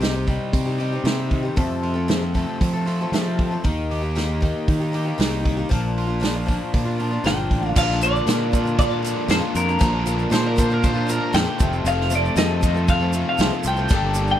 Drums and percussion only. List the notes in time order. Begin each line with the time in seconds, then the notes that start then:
0.02 snare, open hi-hat
0.28 kick, open hi-hat
0.53 kick, open hi-hat
0.80 open hi-hat
1.05 snare, open hi-hat
1.31 kick, open hi-hat
1.57 kick, open hi-hat
1.83 open hi-hat
2.09 snare, open hi-hat
2.35 kick, open hi-hat
2.61 kick, open hi-hat
2.87 open hi-hat
3.13 snare, open hi-hat
3.39 kick, open hi-hat
3.64 kick, open hi-hat
3.91 open hi-hat
4.16 snare, open hi-hat
4.42 kick, open hi-hat
4.68 kick, open hi-hat
4.94 open hi-hat
5.20 snare, open hi-hat
5.45 kick, open hi-hat
5.71 kick, open hi-hat
5.98 open hi-hat
6.23 snare, open hi-hat
6.48 kick, open hi-hat
6.74 kick, open hi-hat
7.00 open hi-hat
7.25 snare, open hi-hat
7.51 kick, open hi-hat
7.76 kick, crash, shaker
7.91 snare
8.01 crash, shaker
8.16 shaker
8.27 snare, crash, shaker
8.53 kick, crash, shaker
8.67 shaker
8.79 kick, crash, shaker
9.04 crash, shaker
9.30 snare, crash, shaker
9.55 crash, shaker
9.69 shaker
9.80 kick, crash, shaker
10.06 crash, shaker
10.19 shaker
10.32 snare, crash, shaker
10.58 kick, crash, shaker
10.71 shaker
10.83 kick, crash, shaker
11.09 crash, shaker
11.34 snare, crash, shaker
11.59 kick, crash, shaker
11.73 shaker
11.86 crash, shaker
12.01 snare
12.10 crash, shaker
12.25 shaker
12.36 snare, crash, shaker
12.63 kick, crash, shaker
12.76 shaker
12.88 kick, crash, shaker
13.13 crash, shaker
13.38 snare, crash, shaker
13.64 crash, shaker
13.76 shaker
13.89 kick, crash, shaker
14.14 crash, shaker
14.27 shaker